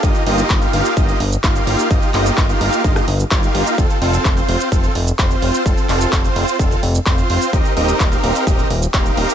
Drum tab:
HH |xxoxxxoxxxoxxxox|xxo-xxoxxxoxxxox|xxoxxxoxxxoxxxox|xxoxxxoxxxoxxxox|
SH |xx-xxx-xxx-xxx-x|xx-xxx-xxx-xxx-x|xx-xxx-xxx-xxx-x|xx-xxx-xxx-xxx-x|
CP |----x-------x---|--x-x-------x---|----x-------x---|--x-x-------x---|
SD |----------------|---------r------|----------------|----------------|
BD |o---o---o---o---|o---o---o---o---|o---o---o---o---|o---o---o---o---|

HH |xxoxxxoxxxoxxxo-|
SH |xx-xxx-xxx-xxx-x|
CP |----x-------x---|
SD |----------------|
BD |o---o---o---o---|